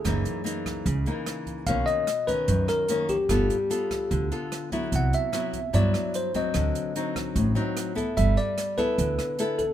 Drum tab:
HH |xxxxxxxx|xxxxxxxx|xxxxxxxx|xxxxxxxx|
SD |r--r--r-|--r--r--|r--r--r-|--r--r--|
BD |o--oo--o|o--oo--o|o--oo--o|o--oo--o|

HH |xxxxxxxx|xxxxxxxx|
SD |r--r--r-|--r--r--|
BD |o--oo--o|o--oo--o|